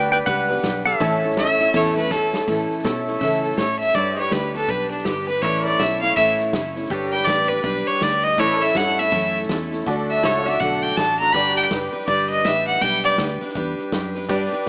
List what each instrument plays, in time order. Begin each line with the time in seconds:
Already playing: fingered electric bass D2, honky-tonk piano B3 D4 G4 B4, steel-string acoustic guitar D4 G4 B4, pedal steel guitar F#4 B4 D5 G5
0.11 steel-string acoustic guitar D4 G4 B4, pedal steel guitar G4 B4 G5, snare
0.26 fingered electric bass C#2, steel-string acoustic guitar G3 D4 G4 B4, pedal steel guitar B4 F#5, kick, snare
0.49 honky-tonk piano B3 D4 G4 B4, steel-string acoustic guitar D4 G4 B4, snare
0.56 snare
0.62 fingered electric bass B1, steel-string acoustic guitar G3 D4 G4 B4, kick, snare, hi-hat pedal
0.85 steel-string acoustic guitar D4 G4 B4, pedal steel guitar A4 E5, snare
1.00 fingered electric bass A1, steel-string acoustic guitar A2 E3 A3 C#4 E4 A4, honky-tonk piano C#4 E4 A4 C#5, pedal steel guitar A4 C#5, kick, snare
1.04 pedal steel guitar E5
1.23 steel-string acoustic guitar A3 C#4 E4 A4, snare
1.30 snare
1.37 fiddle E5, kick, snare, hi-hat pedal
1.59 steel-string acoustic guitar A3 C#4 E4 A4, snare
1.74 fingered electric bass E2, steel-string acoustic guitar A2 E3 A3 C#4 E4 A4, fiddle C#5, kick, snare
1.96 steel-string acoustic guitar A3 C#4 E4 A4, fiddle B4, snare
2.04 snare
2.10 steel-string acoustic guitar A3 C#4 E4 A4, fiddle A4, kick, snare, hi-hat pedal
2.34 snare
2.48 steel-string acoustic guitar A2 E3 A3 C#4 E4 A4, fingered electric bass A2, kick, snare
2.71 snare
2.78 snare
2.84 fingered electric bass B2, steel-string acoustic guitar A3 C#4 E4 A4, pedal steel guitar A4 C#5 E5, kick, snare, hi-hat pedal
3.07 steel-string acoustic guitar A3 C#4 E4 A4, snare
3.14 snare
3.20 steel-string acoustic guitar A2 E3 A3 C#4 E4 A4, fingered electric bass C#3, fiddle E5, kick, snare
3.43 fiddle A4, snare
3.51 snare
3.57 fingered electric bass A2, steel-string acoustic guitar A3 C#4 E4 A4, fiddle C#5, kick, snare, hi-hat pedal
3.80 fiddle E5, snare
3.88 snare
3.95 fingered electric bass G2, steel-string acoustic guitar G3 D4 G4 B4, pedal steel guitar A4 C#5, fiddle D5, kick, snare
3.99 pedal steel guitar E5
4.17 fiddle C#5, snare
4.23 pedal steel guitar G4 B4 D5, snare
4.31 fingered electric bass D2, steel-string acoustic guitar G3 D4 G4 B4, fiddle B4, kick, snare, hi-hat pedal
4.54 steel-string acoustic guitar D4 G4 B4, fiddle A4, snare
4.61 snare
4.68 fingered electric bass B1, steel-string acoustic guitar G3 D4 G4 B4, fiddle B4, kick, snare
4.91 fiddle D4, snare
4.98 snare
5.05 fingered electric bass G1, steel-string acoustic guitar G3 D4 G4 B4, fiddle G4, kick, snare, hi-hat pedal
5.28 steel-string acoustic guitar D4 G4 B4, fiddle B4, snare
5.35 snare
5.42 fingered electric bass A1, steel-string acoustic guitar A2 E3 A3 C#4 E4 C#5, pedal steel guitar E4, fiddle C#5, kick, snare
5.46 pedal steel guitar B4 D5
5.65 pedal steel guitar C#5, fiddle D5, snare
5.71 pedal steel guitar A4
5.79 fingered electric bass B1, steel-string acoustic guitar A3 C#4 E4 C#5, fiddle E5, kick, snare, hi-hat pedal
6.01 steel-string acoustic guitar A3 C#4 E4 C#5, fiddle F5, snare
6.09 snare
6.16 fingered electric bass A1, steel-string acoustic guitar A2 E3 A3 C#4 E4 C#5, fiddle E5, kick, snare
6.39 snare
6.53 fingered electric bass F#1, steel-string acoustic guitar A3 C#4 E4 C#5, kick, snare, hi-hat pedal
6.76 steel-string acoustic guitar A3 C#4 E4 C#5, snare
6.83 snare
6.90 fingered electric bass G1, steel-string acoustic guitar G3 D4 G4 B4, pedal steel guitar G4 A4 C#5, kick, snare
7.12 pedal steel guitar D5, fiddle G5, snare
7.18 pedal steel guitar B4, snare
7.26 fingered electric bass A1, steel-string acoustic guitar G3 D4 G4 B4, fiddle D5, kick, snare, hi-hat pedal
7.48 steel-string acoustic guitar D4 G4 B4, fiddle B4, snare
7.57 snare
7.64 fingered electric bass B1, steel-string acoustic guitar G3 D4 G4 B4, fiddle B4, kick, snare
7.87 fiddle C#5, muted fingered electric bass stroke, snare
7.94 snare
8.01 fingered electric bass D2, steel-string acoustic guitar G3 D4 G4 B4, fiddle D5, kick, snare, hi-hat pedal
8.24 fiddle D#5, snare
8.32 snare
8.38 steel-string acoustic guitar A2 E3 A3 C#4 E4 A4, fingered electric bass A2, honky-tonk piano E4 A4 C#5, pedal steel guitar E4 B4, fiddle C#5, kick, snare
8.42 pedal steel guitar D5
8.61 pedal steel guitar C#5, fiddle E5, snare
8.66 pedal steel guitar A4, snare
8.75 fingered electric bass G2, steel-string acoustic guitar A3 C#4 E4 A4, fiddle F#5, kick, snare, hi-hat pedal
8.98 steel-string acoustic guitar A3 C#4 E4 A4, fiddle E5, snare
9.05 snare
9.12 fingered electric bass F#2, steel-string acoustic guitar A2 E3 A3 C#4 E4 A4, kick, snare
9.35 snare
9.42 snare
9.49 fingered electric bass E2, steel-string acoustic guitar A3 C#4 E4 A4, kick, snare, hi-hat pedal
9.72 steel-string acoustic guitar A3 C#4 E4 A4, snare
9.79 snare
9.86 fingered electric bass D2, steel-string acoustic guitar D3 A3 D4 F#4 A4, honky-tonk piano F#4 A4 D5, kick, snare
10.09 fiddle E5, snare
10.17 snare
10.23 fingered electric bass C#2, steel-string acoustic guitar A3 D4 F#4 A4, pedal steel guitar E4 A4 C#5, fiddle C#5, kick, snare, hi-hat pedal
10.46 steel-string acoustic guitar D4 F#4 A4, pedal steel guitar F#4 D5, fiddle E5, snare
10.54 snare
10.60 fingered electric bass B1, steel-string acoustic guitar D3 A3 D4 F#4 A4, fiddle F#5, kick, snare
10.82 fiddle G5, snare
10.90 snare
10.97 fingered electric bass A1, steel-string acoustic guitar A3 D4 F#4 A4, fiddle A5, kick, snare, hi-hat pedal
11.19 steel-string acoustic guitar D4 F#4 A4, fiddle A#5, snare
11.27 snare
11.33 fingered electric bass G1, steel-string acoustic guitar G3 D4 G4 B4, pedal steel guitar F#4 B4 D5, honky-tonk piano G4 B4 D5, fiddle B5, kick, snare
11.54 pedal steel guitar G4, fiddle G5, snare
11.64 snare
11.71 fingered electric bass F#1, steel-string acoustic guitar G3 D4 G4 B4, kick, snare, hi-hat pedal
11.92 steel-string acoustic guitar D4 G4 B4, muted fingered electric bass stroke, snare
12.01 snare
12.07 fingered electric bass G1, steel-string acoustic guitar G3 D4 G4 B4, fiddle D5, kick, snare
12.30 fiddle D#5, snare
12.38 snare
12.45 fingered electric bass A1, steel-string acoustic guitar G3 D4 G4 B4, fiddle E5, kick, snare, hi-hat pedal
12.67 fiddle F#5, snare
12.74 snare
12.81 fingered electric bass B1, steel-string acoustic guitar G3 D4 G4 B4, fiddle G5, kick, snare
13.04 fiddle D5, snare
13.11 snare
13.18 fingered electric bass D2, steel-string acoustic guitar G3 D4 G4 B4, kick, snare, hi-hat pedal
13.41 steel-string acoustic guitar D4 G4 B4, snare
13.49 snare
13.55 fingered electric bass E2, steel-string acoustic guitar G3 D4 G4 B4, kick, snare
13.78 snare
13.92 fingered electric bass F#2, steel-string acoustic guitar G3 D4 G4 B4, kick, snare, hi-hat pedal
14.15 steel-string acoustic guitar D4 G4 B4, snare
14.22 snare
14.29 fingered electric bass G2, steel-string acoustic guitar G3 D4 G4 B4, honky-tonk piano D4 G4 B4 D5, pedal steel guitar G4 B4 D5, kick, snare, crash
14.52 steel-string acoustic guitar D4 G4 B4, muted fingered electric bass stroke, snare